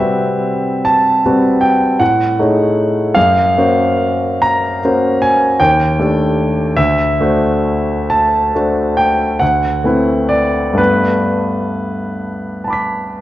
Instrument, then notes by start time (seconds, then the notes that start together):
grand piano
Already playing: C3 E5
0.00 G3 C4 F#4 B4
0.85 A5
1.26 G3 C4 F#4 B4
1.61 G5
1.99 A2 F#5
2.39 A3 D#4 G#4 C#5
3.15 F#2 F5
3.57 A#3 C#4 F#4 C5
4.42 A#5
4.85 A#3 C#4 F#4 C5
5.22 G#5
5.60 D#2 G5
5.99 A3 D4 G4 A4
6.77 D2 E5
7.21 A3 D4 F#4 C5
8.10 A5
8.55 A3 D4 F#4 C5
8.97 G5
9.39 D2 F#5
9.84 A3 C4 E4 B4
10.29 D5
10.73 G2 A3 B3 D4
10.78 B4
12.64 A5 B5
12.70 D6 B6